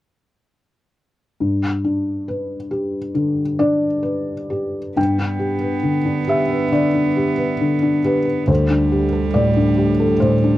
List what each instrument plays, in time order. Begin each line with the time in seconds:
1.40 felt piano G2
1.84 felt piano D4
2.28 felt piano B4
2.71 felt piano G4
3.15 felt piano D3
3.59 felt piano D4 D5
4.03 felt piano B4
4.50 felt piano G4
4.96 felt piano G2 G5, cello B3
5.19 felt piano D4
5.39 felt piano G4
5.61 felt piano B4
5.83 felt piano D3
6.05 felt piano D4
6.28 felt piano G4 E5
6.50 felt piano B4
6.72 felt piano D3 D5
6.94 felt piano D4
7.17 felt piano G4
7.38 felt piano B4
7.61 felt piano D3
7.82 felt piano D4
8.05 felt piano G4 B4
8.25 felt piano B4
8.47 felt piano D2 C5, cello G3
8.70 felt piano D4
8.92 felt piano G4
9.12 felt piano A4
9.34 felt piano A2 D5
9.57 felt piano D4
9.78 felt piano G4
10.00 felt piano A4
10.20 felt piano A2 C5
10.44 felt piano D4